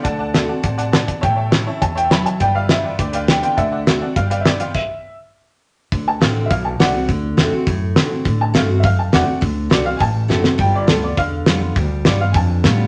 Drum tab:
CC |--------|--------|--------|--------|
HH |x-x-xxxx|x-x-xxxx|x-x-xxxx|x-x-xxxx|
SD |--o---o-|--o---o-|--o---o-|--o---o-|
BD |o---o--o|o---o---|o---o---|o---o---|

CC |x-------|--------|--------|--------|
HH |--------|o-o-o-o-|o-o-o-o-|o-o-o-o-|
SD |--------|--o---o-|--o---o-|--o---o-|
BD |o-------|o---o---|o---o---|o---o---|

CC |--------|--------|--------|
HH |o-o-o---|o-o-o-o-|o-o-o-o-|
SD |--o---oo|--o---o-|--o---o-|
BD |o---o---|o---o---|o---o---|